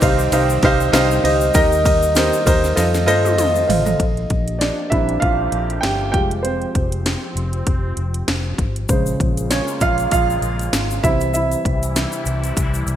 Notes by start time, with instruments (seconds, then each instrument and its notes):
Already playing: grand piano C3 G4 C5 D#5 F5, analog synth pad D#3 G3 C4 G4
0.00 fingered electric bass C2, grand piano D#4 G4 C5 F5, kick, ride, shaker
0.19 shaker
0.32 fingered electric bass C2, grand piano D#4 G4 C5 F5, ride, shaker
0.50 shaker
0.63 fingered electric bass C2, grand piano D#4 G4 C5 F5, kick, ride
0.80 shaker
0.92 fingered electric bass C2, grand piano D#4 G4 C5 F5, snare, ride, shaker
1.11 shaker
1.23 fingered electric bass C#2, grand piano D#4 G4 C5 D#5, ride
1.41 shaker
1.54 fingered electric bass D#2, grand piano D#3 D#4 G4 A#4 D#5, analog synth pad A#3, kick, ride, shaker
1.72 shaker
1.84 grand piano D#4 G4 A#4 D#5, kick, ride, shaker
2.02 shaker
2.15 grand piano D#4 G4 A#4 C5, snare, ride, shaker
2.33 shaker
2.45 fingered electric bass D#2, grand piano D#4 G4 A#4 C5, kick, ride, shaker
2.64 snare, shaker
2.76 fingered electric bass F2, analog synth pad A3 C4 F4, grand piano F4 A4 C5 D#5, snare, ride, shaker
2.94 snare, shaker
3.06 fingered electric bass G2, grand piano F4 A4 C5 D#5, ride, shaker
3.25 high tom, shaker
3.38 fingered electric bass F2, mid tom, ride, shaker
3.55 grand piano A4 D#5, shaker
3.68 fingered electric bass A1, grand piano C5 F5, floor tom, open hi-hat, ride
3.85 grand piano A4 D#5, floor tom, shaker
4.00 fingered electric bass A#1, analog synth pad F3 A#3 D4 G4, kick, closed hi-hat
4.17 closed hi-hat
4.30 fingered electric bass A#1, kick, closed hi-hat
4.48 closed hi-hat
4.59 grand piano D4 D5, snare, closed hi-hat
4.90 fingered electric bass A#1, grand piano G3 C4 D4 E4 E5, kick, closed hi-hat
5.09 closed hi-hat
5.20 fingered electric bass A#1, grand piano F4 F5, kick, closed hi-hat
5.52 fingered electric bass A#1, closed hi-hat
5.70 closed hi-hat
5.81 fingered electric bass G1, grand piano G4 G5, snare, closed hi-hat
6.12 fingered electric bass F1, grand piano G3 G#3 F4 G4 G5, analog synth pad C4, kick, closed hi-hat
6.31 closed hi-hat
6.43 grand piano C4 C5, closed hi-hat
6.62 closed hi-hat
6.75 fingered electric bass F1, kick, closed hi-hat
6.92 closed hi-hat
7.06 snare, closed hi-hat
7.35 fingered electric bass F1, closed hi-hat
7.53 closed hi-hat
7.67 fingered electric bass F1, kick, closed hi-hat
7.97 fingered electric bass F1, closed hi-hat
8.14 closed hi-hat
8.28 fingered electric bass F1, snare, closed hi-hat
8.58 fingered electric bass G#1, kick, closed hi-hat
8.76 closed hi-hat
8.89 fingered electric bass A#1, grand piano C#3 G#3 C5, analog synth pad C#3 G#3 A#3 F4, kick, closed hi-hat, shaker
9.06 closed hi-hat, shaker
9.20 fingered electric bass A#1, kick, closed hi-hat
9.37 closed hi-hat, shaker
9.50 grand piano C#4 C#5, snare, closed hi-hat, shaker
9.68 shaker
9.81 fingered electric bass A#1, grand piano F4 F5, kick, closed hi-hat, shaker
9.98 closed hi-hat, shaker
10.11 fingered electric bass A#1, grand piano F4 F5, kick, closed hi-hat, shaker
10.30 shaker
10.42 fingered electric bass A#1, closed hi-hat, shaker
10.59 closed hi-hat, shaker
10.73 fingered electric bass G#1, snare, closed hi-hat, shaker
10.91 shaker
11.03 fingered electric bass C2, analog synth pad C3 E3 G3 E4, grand piano E3 G3 C4 E4 E5, kick, closed hi-hat, shaker
11.21 closed hi-hat, shaker
11.34 grand piano E4 E5, closed hi-hat, shaker
11.51 closed hi-hat, shaker
11.65 fingered electric bass C2, kick, closed hi-hat
11.83 closed hi-hat, shaker
11.96 snare, closed hi-hat, shaker
12.12 closed hi-hat, shaker
12.26 fingered electric bass C2, closed hi-hat, shaker
12.44 closed hi-hat, shaker
12.57 fingered electric bass C2, kick, closed hi-hat, shaker
12.74 closed hi-hat, shaker
12.86 fingered electric bass C2, closed hi-hat, shaker